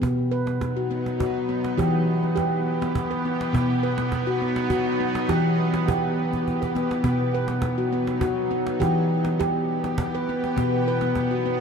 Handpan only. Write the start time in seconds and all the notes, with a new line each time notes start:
0.02 B2 B3
0.31 B4
0.47 B3
0.77 F#4
0.91 B3
1.20 F#4
1.49 B3
1.77 E3 G4
2.23 B3
2.36 G4
2.81 B3
3.11 B4
3.25 B3
3.53 B2 B3
3.83 B4
3.98 B3
4.27 F#4
4.42 B3
4.70 F#4
5.00 B3
5.29 E3 G4
5.74 B3
5.88 G4
6.32 B3
6.62 B4
6.75 B3
7.04 B2 B3
7.34 B4
7.49 B3
7.78 F#4
7.93 B3
8.21 F#4
8.51 B3
8.80 E3 G4
9.25 B3
9.40 G4
9.84 B3
10.15 B4
10.29 B3
10.56 B2 B3
10.88 B4
11.02 B3
11.31 F#4
11.46 B3